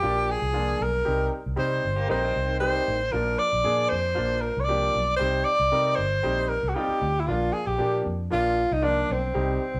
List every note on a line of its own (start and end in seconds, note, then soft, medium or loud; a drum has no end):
0.00 0.36 A#1 medium
0.00 0.28 F3 medium
0.00 0.28 A#3 medium
0.00 0.28 D4 medium
0.00 0.29 F4 medium
0.00 0.32 G4 loud
0.31 0.84 G#4 loud
0.42 0.74 C2 medium
0.53 0.79 F3 medium
0.53 0.80 A#3 medium
0.53 0.80 D4 medium
0.53 0.80 F4 medium
0.81 1.02 B1 medium
0.81 1.32 A#4 loud
1.05 1.28 C2 medium
1.05 1.31 G3 medium
1.05 1.31 C4 medium
1.05 1.32 D#4 medium
1.05 1.31 G4 medium
1.46 1.56 C2 medium
1.56 1.80 C3 medium
1.56 1.83 G3 medium
1.56 1.83 C4 medium
1.56 1.83 D#4 medium
1.56 1.83 G4 medium
1.56 2.06 C5 medium
1.85 2.06 G1 medium
1.96 2.09 A#3 medium
1.96 2.09 G4 medium
2.08 2.31 A#1 medium
2.08 2.35 G3 medium
2.08 2.22 G3 medium
2.08 2.35 C4 medium
2.08 2.35 D#4 medium
2.08 2.22 D#4 medium
2.08 2.35 A#4 medium
2.08 2.58 C5 medium
2.22 2.96 D#3 medium
2.22 2.96 C4 medium
2.36 2.79 C2 medium
2.60 2.86 G3 medium
2.60 2.87 C4 medium
2.60 2.87 D#4 medium
2.60 2.87 G4 medium
2.60 3.13 C5 loud
2.88 3.09 A1 medium
3.12 3.35 A#1 loud
3.12 3.39 F3 medium
3.12 3.38 A#3 medium
3.12 3.39 D4 medium
3.12 3.39 F4 medium
3.12 3.40 A#4 medium
3.39 3.91 D5 loud
3.53 3.63 A#1 medium
3.64 3.87 A#2 medium
3.64 3.90 F3 medium
3.64 3.90 A#3 medium
3.64 3.90 D4 medium
3.64 3.91 G#4 medium
3.89 4.13 F2 medium
3.89 4.42 C5 loud
4.14 4.50 A#1 medium
4.14 4.41 F3 medium
4.14 4.42 A#3 medium
4.14 4.42 D4 medium
4.14 4.42 F4 medium
4.41 4.62 A#4 medium
4.57 4.89 C2 medium
4.57 4.66 C#5 medium
4.64 4.94 F3 medium
4.64 4.94 A#3 medium
4.64 5.16 D5 loud
4.69 4.95 D4 medium
4.69 4.95 G4 medium
4.95 5.17 B1 medium
5.17 5.46 G3 medium
5.17 5.46 C4 medium
5.17 5.46 D#4 medium
5.17 5.46 G4 medium
5.17 5.46 C5 loud
5.21 5.42 C2 medium
5.45 5.97 D5 loud
5.60 5.70 C2 medium
5.72 5.94 C3 medium
5.72 5.98 G3 medium
5.72 5.98 C4 medium
5.72 5.98 D#4 medium
5.72 5.98 A#4 medium
5.95 6.20 G1 medium
5.95 6.50 C5 medium
6.23 6.57 A#1 medium
6.23 6.49 G3 medium
6.23 6.49 C4 medium
6.23 6.50 D#4 medium
6.23 6.50 G4 medium
6.49 6.70 A#4 medium
6.63 6.74 C2 medium
6.69 6.76 F#4 medium
6.74 7.01 G3 medium
6.74 7.02 C4 medium
6.74 7.02 D#4 medium
6.74 7.02 F4 medium
6.74 7.22 G4 medium
6.88 muted fingered electric bass stroke soft
7.02 7.30 D2 medium
7.20 7.28 E4 medium
7.26 7.49 A#1 loud
7.26 7.54 F3 medium
7.26 7.54 A#3 medium
7.26 7.54 D4 medium
7.26 7.55 F4 medium
7.26 7.54 F4 medium
7.53 7.68 G#4 medium
7.66 7.78 A#1 loud
7.66 8.04 G4 medium
7.78 8.01 A#2 medium
7.78 8.05 F3 medium
7.78 8.05 A#3 medium
7.78 8.05 D4 medium
7.78 8.05 G4 medium
8.06 8.27 F2 medium
8.30 8.64 A#1 medium
8.30 8.57 F3 medium
8.30 8.57 A#3 medium
8.30 8.57 D4 medium
8.30 8.57 F4 medium
8.30 8.74 F4 loud
8.72 9.03 C2 medium
8.72 8.86 D#4 medium
8.82 9.08 F3 medium
8.82 9.08 A#3 medium
8.82 9.09 D4 medium
8.82 9.13 D4 loud
8.82 9.09 F4 medium
9.10 9.31 B1 medium
9.10 9.80 C4 medium
9.34 9.57 C2 loud
9.34 9.60 G3 medium
9.34 9.60 C4 medium
9.34 9.61 D#4 medium
9.34 9.61 G4 medium
9.75 9.80 C2 medium